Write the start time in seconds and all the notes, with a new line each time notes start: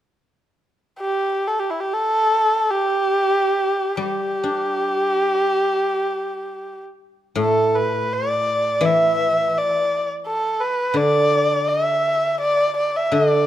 0.99 G4
1.48 A4
1.59 G4
1.70 E4
1.81 G4
1.94 A4
2.70 G4
3.97 G3 G4
4.43 D4
7.35 A2 A4
7.75 B4
8.14 D5
8.81 E3
8.85 E5
9.58 D5
10.27 A4
10.61 B4
10.94 D3 D5
11.68 E5
12.41 D5
12.78 D5
12.97 E5
13.12 D3 D5